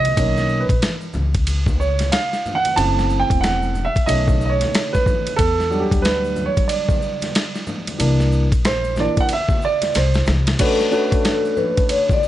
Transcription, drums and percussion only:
0.05 ride medium
0.05 high conga medium
0.05 maracas soft
0.17 kick loud
0.17 ride medium
0.17 maracas medium
0.37 snare soft
0.37 maracas soft
0.49 maracas soft
0.69 kick medium
0.69 ride medium
0.69 maracas soft
0.82 snare loud
0.82 hi-hat pedal soft
0.82 ride medium
0.82 low conga medium
0.82 maracas medium
1.01 maracas soft
1.13 low conga medium
1.13 maracas soft
1.34 kick medium
1.34 ride medium
1.34 maracas soft
1.47 ride medium
1.47 high conga soft
1.47 maracas medium
1.66 kick loud
1.66 high conga medium
1.66 maracas soft
1.81 maracas soft
1.99 snare soft
1.99 ride medium
1.99 high conga medium
1.99 maracas soft
2.12 snare loud
2.12 hi-hat pedal medium
2.12 ride medium
2.12 maracas medium
2.33 snare soft
2.33 maracas soft
2.46 low conga medium
2.46 maracas soft
2.65 ride medium
2.65 high conga medium
2.65 maracas soft
2.77 ride medium
2.77 maracas medium
2.99 snare soft
2.99 maracas soft
3.10 maracas soft
3.30 kick medium
3.30 ride medium
3.30 maracas soft
3.44 snare loud
3.44 hi-hat pedal soft
3.44 ride medium
3.44 low conga medium
3.44 maracas medium
3.62 maracas soft
3.75 low conga medium
3.75 maracas soft
3.95 kick medium
3.95 ride medium
3.95 maracas soft
4.08 ride medium
4.08 high conga soft
4.08 maracas medium
4.28 kick medium
4.28 high conga medium
4.28 maracas soft
4.41 maracas soft
4.61 snare soft
4.61 ride medium
4.61 high conga medium
4.61 maracas soft
4.74 snare loud
4.74 hi-hat pedal medium
4.74 ride medium
4.74 maracas medium
4.94 kick medium
4.94 snare soft
4.94 maracas soft
5.06 kick medium
5.06 low conga medium
5.06 maracas medium
5.27 ride medium
5.27 high conga medium
5.27 maracas soft
5.39 kick loud
5.39 ride medium
5.39 maracas medium
5.60 snare soft
5.60 maracas soft
5.72 maracas soft
5.91 kick loud
5.91 ride medium
5.91 maracas soft
6.05 snare loud
6.05 hi-hat pedal soft
6.05 ride medium
6.05 low conga medium
6.05 maracas medium
6.24 maracas soft
6.36 low conga medium
6.36 maracas soft
6.56 kick medium
6.56 ride medium
6.56 maracas soft
6.69 ride medium
6.69 high conga soft
6.69 maracas medium
6.89 kick loud
6.89 high conga medium
6.89 maracas soft
7.02 maracas soft
7.22 snare soft
7.22 ride medium
7.22 high conga medium
7.22 maracas soft
7.35 snare loud
7.35 hi-hat pedal medium
7.35 ride medium
7.35 maracas medium
7.55 snare soft
7.55 maracas soft
7.67 low conga medium
7.67 maracas soft
7.87 ride medium
7.87 high conga medium
7.87 maracas soft
8.00 ride medium
8.00 maracas medium
8.20 snare soft
8.20 maracas soft
8.32 maracas soft
8.52 kick medium
8.52 ride medium
8.52 maracas soft
8.65 snare loud
8.65 hi-hat pedal soft
8.65 ride medium
8.65 low conga medium
8.65 maracas medium
8.84 maracas soft
8.96 snare soft
8.96 low conga medium
8.96 maracas soft
9.16 kick medium
9.16 ride medium
9.16 maracas soft
9.29 ride medium
9.29 high conga soft
9.29 maracas medium
9.49 kick loud
9.49 high conga medium
9.49 maracas soft
9.62 maracas soft
9.82 snare soft
9.82 ride medium
9.82 high conga medium
9.82 maracas soft
9.94 snare medium
9.94 hi-hat pedal medium
9.94 ride medium
9.94 maracas medium
10.14 snare medium
10.14 maracas soft
10.26 snare medium
10.26 low conga medium
10.26 maracas soft
10.47 snare medium
10.47 ride medium
10.47 high conga medium
10.47 maracas soft
10.59 kick loud
10.59 crash loud
10.59 ride medium
10.59 maracas medium
10.80 snare soft
10.80 maracas soft
10.92 maracas soft
11.12 kick loud
11.12 ride medium
11.12 maracas soft
11.25 snare loud
11.25 hi-hat pedal soft
11.25 ride medium
11.25 low conga medium
11.25 maracas medium
11.45 maracas soft
11.57 low conga medium
11.57 maracas soft
11.77 kick medium
11.77 ride medium
11.77 maracas soft
11.89 ride medium
11.89 high conga soft
11.89 maracas medium
12.09 kick medium
12.09 high conga medium
12.09 maracas soft
12.23 maracas soft

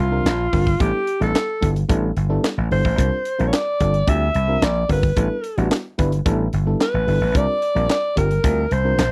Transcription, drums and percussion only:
0.26 snare loud
0.26 clap medium
0.26 closed hi-hat loud
0.53 kick loud
0.53 open hi-hat medium
0.67 kick loud
0.80 kick loud
0.80 closed hi-hat loud
1.07 closed hi-hat medium
1.22 closed hi-hat soft
1.35 snare loud
1.35 clap loud
1.35 closed hi-hat loud
1.62 kick loud
1.62 closed hi-hat medium
1.76 closed hi-hat medium
1.90 kick loud
1.90 closed hi-hat loud
2.17 closed hi-hat medium
2.44 snare loud
2.44 clap medium
2.44 closed hi-hat loud
2.71 open hi-hat medium
2.85 kick medium
2.98 kick loud
2.98 closed hi-hat loud
3.25 closed hi-hat medium
3.40 closed hi-hat soft
3.53 snare loud
3.53 clap loud
3.53 closed hi-hat loud
3.80 kick loud
3.80 closed hi-hat medium
3.94 closed hi-hat medium
4.07 kick loud
4.07 closed hi-hat loud
4.34 closed hi-hat medium
4.62 snare loud
4.62 clap medium
4.62 closed hi-hat loud
4.89 kick loud
4.89 open hi-hat medium
5.03 kick loud
5.16 kick loud
5.16 closed hi-hat loud
5.44 closed hi-hat medium
5.58 closed hi-hat medium
5.71 snare loud
5.71 clap loud
5.71 closed hi-hat loud
5.99 kick medium
5.99 closed hi-hat medium
6.12 closed hi-hat medium
6.26 kick loud
6.26 closed hi-hat loud
6.53 closed hi-hat medium
6.81 snare loud
6.81 clap medium
6.81 closed hi-hat loud
7.08 open hi-hat medium
7.35 kick loud
7.35 closed hi-hat loud
7.62 closed hi-hat medium
7.76 closed hi-hat soft
7.89 snare loud
7.89 clap medium
7.89 closed hi-hat loud
8.17 kick loud
8.17 closed hi-hat medium
8.31 closed hi-hat medium
8.44 kick loud
8.44 closed hi-hat loud
8.71 closed hi-hat medium
8.99 snare loud
8.99 clap medium
8.99 closed hi-hat loud

